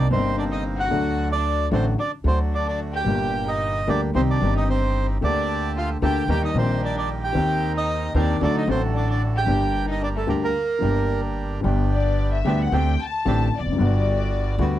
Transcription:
0.09 G1 G2 C3 G3 A#3 C4 D#4 C5
0.38 D4 D5
0.51 D#4 D#5
0.77 F#4 F#5
0.88 D2 D3 F#3 A3 D4 F#4
0.93 F#4
1.32 D4 D5
1.71 A1 A2 D3 F#3 A3 C4 D4 F#4 C5
1.98 D4 D5
2.24 D2 D3 F#3 A3 C4 D4 F#4 C5
2.53 D4 D5
2.66 D4 D5
2.93 G4 G5
3.05 G1 G2 A#2 G3 A#3 G4
3.09 G4
3.48 D#4 D#5
3.87 D2 D3 G3 A#3 D4 G4 D5
4.14 C2 C3 D#3 G3 C4 D#4 G4 C5
4.28 D4 D5
4.40 G1 G2 D#3 G3 C4 D#4 G4
4.44 G4
4.55 D#4 D#5
4.69 C4 C5
5.21 D2 D3 A3 A#3 D4 G4 A4 D5
5.77 F4 F5
6.02 D2 D3 A3 A#3 G4 A4 G5
6.28 D#2 D#3 G3 A#3 D#4 G4 G5
6.44 D#4 D#5
6.54 A#1 A#2 D#3 G3 A#3 C4 D#4 G4
6.58 C5
6.83 D4 D5
6.96 D4 D5
7.23 G4 G5
7.34 D#2 D#3 A#3 C4 D#4 G4 A#4
7.75 D#4 D#5
8.14 D#2 D#3 A#3 C4 D4 D#4 G4 A#4
8.19 D5
8.41 D2 D3 F#3 A3 D4 F#4 A4 D5
8.55 D#4 D#5
8.66 A1 A2 D3 F#3 A3 C4 D4 F#4 A4
8.71 C5
8.94 D4 D5
9.08 D4 D5
9.35 G4 G5
9.44 G1 G2 D3 G3 A#3 D4 G4
9.49 G4 A#4
9.88 D#4 D#5
10.01 D4 D5
10.16 A3 A4
10.27 D2 D3 G3 A#3 D4 G4 A#4
10.42 A#3 A#4
10.79 G1 G2 D3 G3 A#3 D4
10.83 G4 A#4
11.61 G1 G2 D3 G3 B3 D4 G4
11.65 G4
11.92 D5
12.34 E5
12.45 D2 D3 G3 B3 D4 G4
12.61 F#5
12.72 D2 D3 A3 C4 D4 G4 G5
13.02 A5
13.25 A1 A2 D3 A3 C4 D4 G4
13.56 E1 E2 D5
13.66 F1 F2
13.72 F#1 F#2
13.77 G1 G2 D3 G3 B3 F#4
14.58 D2 D3 G3 B3 F#4

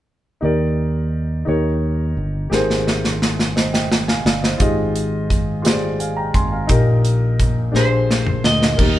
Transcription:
0.41 D#2 D#3 D#4 G4 A#4 D5
1.45 D#2 D#3 D#4 G4 A#4 C#5
2.17 G1
2.50 G#1 G#2 G4 G#4 A#4 C5, snare
2.70 snare
2.87 snare
3.04 snare
3.22 snare
3.39 snare
3.56 C5 D#5, snare
3.73 D#5 G5, snare
3.92 snare
4.08 F5 G#5, snare
4.25 G1 D5 F5, snare
4.42 C5 D#5, snare
4.58 G#1 G#2 F4 G4 G#4, kick, closed hi-hat
4.62 D#5
4.96 closed hi-hat
5.30 kick, closed hi-hat
5.62 F4 G4 G#4 C5, closed hi-hat
5.67 snare
5.72 D5
6.00 F5 G#5, closed hi-hat
6.17 G5 A#5
6.34 G#1 G#5 C6, kick, closed hi-hat
6.52 F5 G#5
6.67 A#1 A#2 D#4 G4 A#4 D#5, kick, closed hi-hat
7.05 closed hi-hat
7.40 kick, closed hi-hat
7.72 A#1 A#2 D4 G4 G#4, snare
7.76 C5
8.11 snare
8.27 mid tom
8.44 D2 D#5, snare
8.62 snare
8.76 D#2 D#3 A#3 D#4 G4 A#4, kick, crash

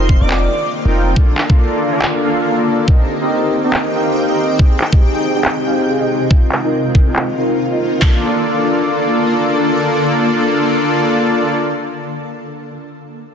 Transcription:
Already playing: F1 D#3 A#3 C4 D#4 F4 A#4 D#5
0.09 C5, kick
0.21 F1 C4 D#4 F4 A#4 D5 D#5
0.31 clap
0.85 F1 C4 D#4 F4 A#4 G5
1.16 D3 A#3 D4 F4 A4 D5, kick
1.38 clap
1.50 A#3 D4 F4 A4 D5, kick
1.92 A#3 D4 F4 A4 D5
2.02 clap
2.24 A#3 D4 F4 A4 F5
2.57 A#3 D4 F4 A4 D5
2.88 D#3 C4 D#4 G4 A#4 D#5 G5, kick
3.21 C4 D#4 G4 A#4 D#5
3.64 C4 D#4 G4 A#4 D#5
3.74 clap
3.95 C4 D#4 G4 A#4 F5
4.28 C4 D#4 G4 A#4 D#5
4.59 C3 G#3 C4 D#4 G4 G#4 D#5, kick
4.81 clap
4.93 C4 D#4 G4 G#4 D#5, kick
5.36 C4 D#4 G4 G#4 D#5
5.45 clap
5.66 C4 D#4 G4 G#4 F5
6.00 C4 D#4 G4 G#4 D#5
6.31 D#3 A#3 C4 D#4 F4 A#4 D#5, kick
6.52 clap
6.64 C4 D#4 F4 A#4 D#5
6.95 kick
7.07 C4 D#4 F4 A#4 D#5
7.16 clap
7.38 C4 D#4 F4 A#4 F5
7.71 C4 D#4 F4 A#4 D#5
8.02 D3 A#3 D4 F4 A4 D5, kick, clap

